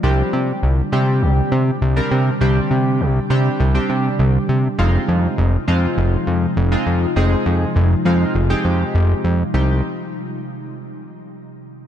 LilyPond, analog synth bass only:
\new Staff \with { instrumentName = "Analog synth bass" } { \clef bass \time 4/4 \key c \minor \tempo 4 = 101 c,8 c8 c,8 c8 c,8 c8 c,8 c8 | c,8 c8 c,8 c8 c,8 c8 c,8 c8 | f,,8 f,8 f,,8 f,8 f,,8 f,8 f,,8 f,8 | f,,8 f,8 f,,8 f,8 f,,8 f,8 f,,8 f,8 |
c,8 r2. r8 | }